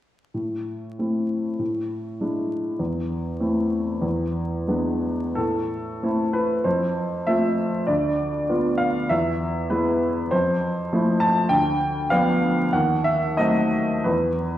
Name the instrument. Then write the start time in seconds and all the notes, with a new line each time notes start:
upright piano
0.34 A2
0.99 A3 C4 E4
1.59 A2
2.21 G#3 D4 E4
2.79 E2
3.40 A3 C4 E4
4.02 E2
4.68 G#3 B3 D4
5.35 A2 A4
6.03 A3 C4 E4
6.33 B4
6.64 F2 C5
7.27 A3 C4 F4 E5
7.87 D2 D5
8.49 B3 F4
8.78 F5
9.09 E2 E5
9.70 G#3 B3 E4 B4
10.31 F2 C5
10.93 F3 A3 E4
11.20 A5
11.49 D2 G5
12.10 F3 B3 D4 F5
12.73 D#2 F#5
13.04 E5
13.37 F#3 A3 C4 D#5
14.04 E2 B4